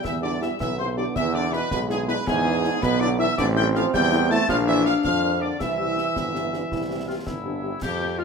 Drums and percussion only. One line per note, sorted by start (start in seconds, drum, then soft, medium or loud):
0.05 concert bass drum medium
0.05 snare medium
0.42 snare medium
0.60 concert bass drum medium
0.60 snare medium
1.16 concert bass drum medium
1.16 snare medium
1.16 crash soft
1.53 snare medium
1.71 concert bass drum medium
1.71 snare medium
1.90 snare medium
2.08 snare medium
2.27 concert bass drum medium
2.27 snare medium
2.65 snare medium
2.83 concert bass drum medium
2.83 snare medium
3.38 concert bass drum medium
3.38 snare medium
3.38 crash soft
3.75 snare medium
3.94 concert bass drum medium
3.94 snare medium
4.12 snare medium
4.31 snare medium
4.49 concert bass drum medium
4.49 snare medium
4.86 snare medium
5.05 concert bass drum medium
5.05 snare medium
5.60 concert bass drum medium
5.60 snare medium
5.60 crash soft
5.98 snare medium
6.16 concert bass drum medium
6.16 snare medium
6.35 snare medium
6.54 snare medium
6.72 concert bass drum medium
6.72 snare medium
7.27 concert bass drum medium
7.27 snare medium
7.82 concert bass drum medium
7.82 snare medium
7.82 crash medium